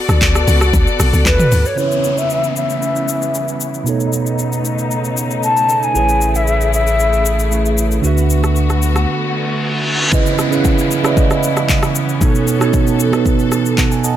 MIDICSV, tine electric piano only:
0, 0, Header, 1, 2, 480
1, 0, Start_track
1, 0, Key_signature, 4, "minor"
1, 0, Tempo, 521739
1, 1637, Time_signature, 4, 2, 24, 8
1, 13034, End_track
2, 0, Start_track
2, 0, Title_t, "Tine electric piano"
2, 0, Program_c, 0, 4
2, 1611, Note_on_c, 0, 49, 65
2, 1625, Note_on_c, 0, 61, 58
2, 1638, Note_on_c, 0, 64, 58
2, 1651, Note_on_c, 0, 71, 56
2, 1665, Note_on_c, 0, 73, 53
2, 1711, Note_off_c, 0, 73, 0
2, 1723, Note_on_c, 0, 76, 68
2, 1798, Control_c, 0, 64, 127
2, 3507, Note_off_c, 0, 49, 0
2, 3514, Note_off_c, 0, 61, 0
2, 3521, Note_off_c, 0, 64, 0
2, 3527, Note_off_c, 0, 71, 0
2, 3531, Note_on_c, 0, 47, 76
2, 3545, Note_on_c, 0, 59, 71
2, 3558, Note_on_c, 0, 63, 66
2, 3563, Note_off_c, 0, 76, 0
2, 3570, Control_c, 0, 64, 0
2, 3572, Note_on_c, 0, 69, 69
2, 3585, Note_on_c, 0, 73, 84
2, 3728, Control_c, 0, 64, 127
2, 5427, Note_off_c, 0, 47, 0
2, 5434, Note_off_c, 0, 59, 0
2, 5441, Note_off_c, 0, 63, 0
2, 5448, Note_off_c, 0, 69, 0
2, 5451, Note_on_c, 0, 57, 65
2, 5454, Note_off_c, 0, 73, 0
2, 5464, Note_on_c, 0, 64, 58
2, 5478, Note_on_c, 0, 68, 58
2, 5488, Control_c, 0, 64, 0
2, 5491, Note_on_c, 0, 71, 58
2, 5505, Note_on_c, 0, 73, 71
2, 5621, Control_c, 0, 64, 127
2, 6875, Note_off_c, 0, 57, 0
2, 6882, Note_off_c, 0, 64, 0
2, 6889, Note_off_c, 0, 68, 0
2, 6895, Note_off_c, 0, 71, 0
2, 6902, Note_off_c, 0, 73, 0
2, 6904, Note_on_c, 0, 57, 60
2, 6911, Note_on_c, 0, 64, 55
2, 6917, Note_on_c, 0, 68, 55
2, 6925, Note_on_c, 0, 71, 57
2, 6931, Note_on_c, 0, 73, 68
2, 7370, Note_on_c, 0, 50, 75
2, 7384, Note_on_c, 0, 62, 73
2, 7391, Note_off_c, 0, 57, 0
2, 7394, Note_off_c, 0, 64, 0
2, 7397, Note_off_c, 0, 68, 0
2, 7398, Note_on_c, 0, 66, 69
2, 7401, Note_off_c, 0, 71, 0
2, 7404, Note_off_c, 0, 73, 0
2, 7410, Control_c, 0, 64, 0
2, 7411, Note_on_c, 0, 71, 70
2, 7425, Note_on_c, 0, 76, 85
2, 7542, Control_c, 0, 64, 127
2, 9267, Note_off_c, 0, 50, 0
2, 9274, Note_off_c, 0, 62, 0
2, 9280, Note_off_c, 0, 66, 0
2, 9287, Note_off_c, 0, 71, 0
2, 9294, Note_off_c, 0, 76, 0
2, 9304, Note_on_c, 0, 49, 81
2, 9311, Note_on_c, 0, 61, 77
2, 9317, Note_on_c, 0, 64, 79
2, 9324, Note_on_c, 0, 71, 75
2, 9330, Control_c, 0, 64, 0
2, 9332, Note_on_c, 0, 75, 97
2, 9469, Control_c, 0, 64, 127
2, 9600, Note_off_c, 0, 49, 0
2, 9604, Note_off_c, 0, 61, 0
2, 9607, Note_off_c, 0, 64, 0
2, 9611, Note_off_c, 0, 71, 0
2, 9614, Note_off_c, 0, 75, 0
2, 9668, Note_on_c, 0, 49, 84
2, 9676, Note_on_c, 0, 61, 78
2, 9682, Note_on_c, 0, 64, 76
2, 9689, Note_on_c, 0, 71, 79
2, 9695, Note_on_c, 0, 77, 75
2, 9744, Note_off_c, 0, 77, 0
2, 9753, Note_on_c, 0, 78, 95
2, 10055, Note_off_c, 0, 49, 0
2, 10059, Note_off_c, 0, 61, 0
2, 10062, Note_off_c, 0, 64, 0
2, 10065, Note_off_c, 0, 71, 0
2, 10098, Note_off_c, 0, 78, 0
2, 10148, Note_on_c, 0, 49, 82
2, 10155, Note_on_c, 0, 61, 76
2, 10161, Note_on_c, 0, 64, 75
2, 10168, Note_on_c, 0, 71, 73
2, 10175, Note_on_c, 0, 74, 75
2, 10224, Note_off_c, 0, 74, 0
2, 10233, Note_on_c, 0, 75, 90
2, 10921, Note_off_c, 0, 49, 0
2, 10924, Note_off_c, 0, 61, 0
2, 10928, Note_off_c, 0, 64, 0
2, 10931, Note_off_c, 0, 71, 0
2, 10963, Note_off_c, 0, 75, 0
2, 11224, Note_on_c, 0, 47, 85
2, 11231, Note_on_c, 0, 59, 78
2, 11237, Note_on_c, 0, 63, 75
2, 11244, Note_on_c, 0, 69, 75
2, 11250, Control_c, 0, 64, 0
2, 11252, Note_on_c, 0, 73, 92
2, 11415, Control_c, 0, 64, 127
2, 11521, Note_off_c, 0, 47, 0
2, 11524, Note_off_c, 0, 59, 0
2, 11527, Note_off_c, 0, 63, 0
2, 11530, Note_off_c, 0, 69, 0
2, 11534, Note_off_c, 0, 73, 0
2, 11590, Note_on_c, 0, 47, 88
2, 11597, Note_on_c, 0, 59, 77
2, 11603, Note_on_c, 0, 63, 78
2, 11610, Note_on_c, 0, 69, 78
2, 11617, Note_on_c, 0, 73, 93
2, 11976, Note_off_c, 0, 47, 0
2, 11979, Note_off_c, 0, 59, 0
2, 11982, Note_off_c, 0, 63, 0
2, 11986, Note_off_c, 0, 69, 0
2, 11990, Note_off_c, 0, 73, 0
2, 12069, Note_on_c, 0, 47, 84
2, 12076, Note_on_c, 0, 59, 74
2, 12083, Note_on_c, 0, 63, 76
2, 12090, Note_on_c, 0, 69, 77
2, 12097, Note_on_c, 0, 71, 94
2, 12439, Note_on_c, 0, 81, 74
2, 12661, Note_off_c, 0, 81, 0
2, 12680, Note_on_c, 0, 78, 77
2, 12685, Note_on_c, 0, 75, 57
2, 12797, Note_off_c, 0, 78, 0
2, 12800, Note_off_c, 0, 75, 0
2, 12804, Note_on_c, 0, 80, 69
2, 12842, Note_off_c, 0, 47, 0
2, 12845, Note_off_c, 0, 59, 0
2, 12848, Note_off_c, 0, 63, 0
2, 12852, Note_off_c, 0, 69, 0
2, 12855, Note_off_c, 0, 71, 0
2, 12912, Note_off_c, 0, 80, 0
2, 12919, Note_on_c, 0, 75, 72
2, 12919, Note_on_c, 0, 81, 66
2, 12924, Note_on_c, 0, 78, 60
2, 13033, Note_off_c, 0, 78, 0
2, 13034, Note_off_c, 0, 75, 0
2, 13034, Note_off_c, 0, 81, 0
2, 13034, End_track
0, 0, End_of_file